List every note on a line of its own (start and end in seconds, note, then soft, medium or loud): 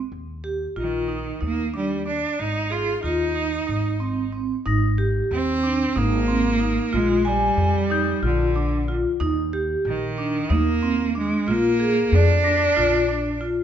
0.12 0.66 D#2 medium
0.44 0.65 G4 medium
0.76 1.31 A#1 medium
0.76 1.39 D#3 medium
0.76 0.98 F4 medium
1.08 1.30 D#4 medium
1.41 2.23 D#2 medium
1.41 1.73 A#3 medium
1.41 1.62 D#4 medium
1.74 2.05 G3 medium
1.74 1.95 D4 medium
2.06 2.27 D4 medium
2.06 2.40 D4 medium
2.39 2.94 G#1 medium
2.39 2.73 D#4 medium
2.70 3.02 F4 medium
2.70 2.92 G#4 medium
3.03 3.58 D#2 medium
3.03 4.29 D#4 medium
3.03 3.24 F4 medium
3.35 3.57 D#4 medium
3.67 4.50 G#1 medium
3.67 3.89 D#4 medium
4.00 4.22 C4 medium
4.32 4.54 C4 medium
4.66 5.20 G#1 loud
4.66 4.87 D#4 medium
4.66 5.31 A#6 soft
4.98 5.41 G4 medium
5.31 5.85 D#2 medium
5.31 5.99 C4 loud
5.63 5.85 D4 medium
5.96 6.77 G#1 loud
5.96 6.96 A#3 loud
5.96 6.17 D#4 medium
6.28 6.49 C4 medium
6.60 6.81 D#4 medium
6.93 7.48 A#1 loud
6.93 7.28 G#3 loud
6.93 7.14 F4 medium
7.25 8.23 G3 medium
7.25 7.68 G#5 medium
7.57 8.12 F2 medium
7.90 8.11 D#4 medium
7.90 8.55 G6 medium
8.22 9.04 A#1 medium
8.22 8.93 D3 medium
8.22 8.44 F4 medium
8.56 8.77 D4 medium
8.88 9.09 F4 medium
9.20 9.75 D#2 loud
9.20 9.41 D#4 medium
9.53 9.95 G4 medium
9.85 10.39 A#1 medium
9.85 10.54 D#3 medium
10.18 10.39 D4 medium
10.50 11.31 D#2 medium
10.50 11.16 A#3 medium
10.50 10.71 D#4 medium
10.83 11.04 C4 medium
11.15 11.52 G#3 medium
11.15 11.36 D4 medium
11.46 12.01 A#1 medium
11.46 11.69 F4 medium
11.51 12.16 A#3 loud
11.80 12.22 G#4 medium
12.12 12.66 F2 medium
12.12 13.43 D4 loud
12.44 12.66 D4 medium
12.44 13.09 A#6 medium
12.76 13.59 A#1 medium
12.76 12.98 F4 medium
13.08 13.30 D4 medium
13.41 13.62 F4 medium